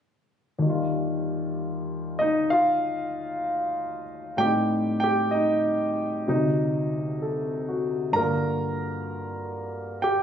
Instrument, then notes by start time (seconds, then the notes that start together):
grand piano
0.59 D#2 D#3
0.66 G3 F4
2.19 D#4 D#5
2.50 F4 F5
4.37 A2 G3 C4 G4 G5
4.42 D#4
5.00 G4 G5
5.31 D#4 D#5
6.27 D2 C3 F#3 D#4
7.22 A4
7.69 F#4
8.12 G2 D3 A#3 A#4 A#5
8.18 F4
10.02 G4 G5